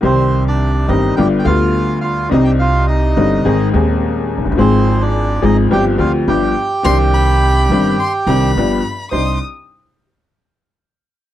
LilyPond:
<<
  \new Staff \with { instrumentName = "Violin" } { \time 4/4 \key c \minor \tempo 4 = 106 r1 | r1 | r1 | c'''8 b''4. c'''8 b''4. |
ees'''8 r2. r8 | }
  \new Staff \with { instrumentName = "Bandoneon" } { \time 4/4 \key c \minor << { c''8. d''8. ees''8 g''16. g''32 f''4 f''8 | ees''16 g''16 f''8 ees''4. r4. | c''8. d''8. ees''8 g''8 f''8 g''4~ | g''2. r4 |
c'''8 r2. r8 | } \\ { c'8. d'8. ees'8 g'8 f'4 f'8 | ees'16 g'16 f'8 ees'4. r4. | c'8. d'8. ees'8 g'8 f'8 g'4~ | g'2. r4 |
r1 | } >> }
  \new Staff \with { instrumentName = "Upright piano" } { \clef bass \time 4/4 \key c \minor << { <c, c ees g c' g'>4. <g,, g, ees g c' g'>8 <g,, g, d g b f'>8 <d, d g b f'>4. | <c, c g c' d' ees'>4. <g,, g, d g c' ees'>8 <aes,, aes, ees aes c' aes'>8 <ees,, ees, ees aes c' aes'>4. | <aes,, aes, f aes c' aes'>4. <aes,, aes, f aes c' aes'>8 <g,, g, f c' d' g'>8 <d, d f c' d' g'>8 <g,, g, f b d' g'>8 r8 | <c, c ees c' d' g'>4. <g,, g, ees c' d' g'>8 r8 <c, c ees c' d' g'>8 <g,, g, f b d' g'>8 r8 |
<c, d' ees' c''>8 r2. r8 | } \\ { r1 | r2. r8 r32 f,,32 fis,,32 g,,32 | r1 | r1 |
r1 | } >> }
  \new Staff \with { instrumentName = "Upright bass" } { \clef bass \time 4/4 \key c \minor c,4~ c,16. r32 g,,16. r32 g,,16. r32 d,4~ d,16. r32 | c,4~ c,16. r32 g,,16. r32 aes,,16. r32 ees,4~ ees,32 f,,32 fis,,32 g,,32 | aes,,4~ aes,,16. r32 aes,,16. r32 g,,16. r32 d,16. r32 g,,16. r8 r32 | c,4~ c,16. r32 g,,16. r8 r32 c,16. r32 g,,16. r8 r32 |
c,8 r2. r8 | }
>>